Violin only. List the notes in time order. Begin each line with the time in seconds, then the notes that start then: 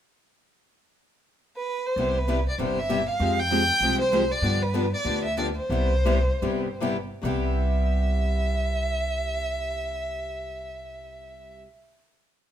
1.57 B4
1.87 C5
2.19 B4
2.49 D5
2.61 C5
2.79 E5
3.09 F5
3.40 G5
4.01 C5
4.32 D5
4.62 B4
4.94 D5
5.24 E5
5.38 D5
5.57 C5
7.26 E5